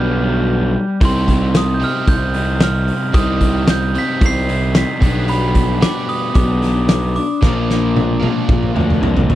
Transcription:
Already playing: picked electric bass B1, overdriven electric guitar B2 G3 B3 D4 G4 B4, glockenspiel G6
0.21 overdriven electric guitar B2 G3 B3 D4
1.01 picked electric bass C2, overdriven electric guitar C3 G3 C4 D#4 G4 C5, kick, open hi-hat
1.05 glockenspiel C6
1.28 kick, open hi-hat
1.54 glockenspiel D#6, snare, open hi-hat
1.74 glockenspiel G6
1.80 overdriven electric guitar C3 G3 C4 D#4 G4 C5, open hi-hat
1.84 glockenspiel F6
2.07 picked electric bass C2, glockenspiel G6, kick, open hi-hat
2.34 overdriven electric guitar C3 G3 C4 D#4, open hi-hat
2.60 overdriven electric guitar C3 G3 C4 D#4, glockenspiel F6, snare, open hi-hat
2.88 open hi-hat
3.12 picked electric bass C2, overdriven electric guitar C3 G3 C4 D#4 G4 C5, glockenspiel D#6, kick, open hi-hat
3.17 overdriven electric guitar C4 D#4
3.41 kick, open hi-hat
3.67 glockenspiel G6, snare, open hi-hat
3.94 overdriven electric guitar C3 G3 C4 D#4 G4 C5, open hi-hat
3.98 glockenspiel B6
4.21 picked electric bass C2, kick, open hi-hat
4.26 glockenspiel C7
4.49 overdriven electric guitar C3 G3 C4 D#4, open hi-hat
4.74 overdriven electric guitar C3 G3 C4 D#4, glockenspiel B6, snare, open hi-hat
5.00 picked electric bass B1, overdriven electric guitar B2 G3 B3 D4 G4 B4, kick, open hi-hat
5.28 glockenspiel B5, open hi-hat
5.55 kick, open hi-hat
5.81 overdriven electric guitar B3 D4 G4 B4, glockenspiel D6, snare, open hi-hat
6.09 glockenspiel D#6, open hi-hat
6.33 picked electric bass B1, overdriven electric guitar B2 G3 B3 D4, glockenspiel D6, kick, open hi-hat
6.62 overdriven electric guitar B2 G3 B3 D4, snare, open hi-hat
6.88 glockenspiel D6, snare, open hi-hat
7.16 glockenspiel D6, open hi-hat
7.41 picked electric bass A#1, overdriven electric guitar A#2 F3 A#3 D4 F4 A#4, kick, snare
7.70 snare
7.96 high tom
8.19 overdriven electric guitar A#2 F3 A#3 D4 F4 A#4, high tom
8.49 picked electric bass A#1, kick, mid tom
8.63 mid tom
8.74 picked electric bass D2, overdriven electric guitar A#2 F3 A#3 D4, mid tom
8.90 mid tom
9.01 picked electric bass C2, overdriven electric guitar A#2 F3 A#3 D4, mid tom
9.17 floor tom
9.29 picked electric bass A#1, floor tom

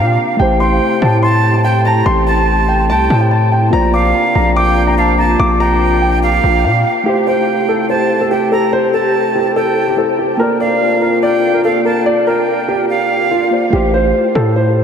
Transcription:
Already playing: 808-style bass A#2, french horn section C3 A#3 D4 F4, grand piano F5, flute F5
0.37 808-style bass A1, synth keys A3 E4 G4, french horn section A3 E4 G4, grand piano G5
0.42 synth keys C5
0.60 flute G5, grand piano C6
1.02 808-style bass A2, grand piano A5
1.23 flute A5, grand piano C6
1.54 grand piano A5
1.64 grand piano G5, flute G5
1.85 grand piano A5, flute A#5
2.06 808-style bass A1, grand piano C6
2.27 grand piano A5, flute A5
2.69 grand piano G5
2.89 808-style bass C2, flute G5, grand piano A5
3.10 808-style bass A2
3.21 grand piano G5
3.31 grand piano A5
3.52 grand piano G5
3.70 808-style bass A#1, french horn section C3 A#3 D4 F4, synth keys A#3 F4 C5, grand piano A#5
3.75 synth keys D5
3.94 flute F5, grand piano D6
4.35 808-style bass A#1, grand piano A#5
4.56 flute G5, grand piano D6
4.87 grand piano A#5
4.98 flute F5, grand piano A5
5.19 flute A5, grand piano A#5
5.39 808-style bass A#1, grand piano D6
5.60 flute G5, grand piano A#5
6.02 grand piano G5
6.23 flute F5
6.44 808-style bass A#1
6.65 808-style bass A#2, grand piano F5
7.03 french horn section C3 A3 E4 G4, synth keys A3 E4 G4, grand piano G4
7.09 synth keys C5
7.27 grand piano C5, flute G5
7.69 grand piano A4
7.90 grand piano C5, flute A5
8.21 grand piano A4
8.31 grand piano G4, flute G5
8.52 grand piano A4, flute A#5
8.73 grand piano C5
8.94 grand piano A4, flute A5
9.35 grand piano G4
9.56 grand piano A4, flute G5
9.88 grand piano G4
9.96 synth keys A3 E4 G4 C5, grand piano A4
10.19 grand piano G4
10.37 french horn section C3 A#3 D4 F4, synth keys A#3 F4 C5, grand piano A#4
10.42 synth keys D5
10.60 grand piano D5, flute F5
11.02 grand piano A#4
11.23 grand piano D5, flute G5
11.54 grand piano A#4
11.64 grand piano A4, flute F5
11.85 grand piano A#4, flute A5
12.06 grand piano D5
12.27 grand piano A#4, flute G5
12.68 grand piano G4
12.89 flute F5
13.31 grand piano F4
13.50 synth keys A#3 F4 C5 D5
13.70 808-style bass A1, synth keys A3 E4 G4, grand piano G4
13.75 synth keys C5
13.94 grand piano C5
14.35 808-style bass A2, grand piano A4
14.56 grand piano C5

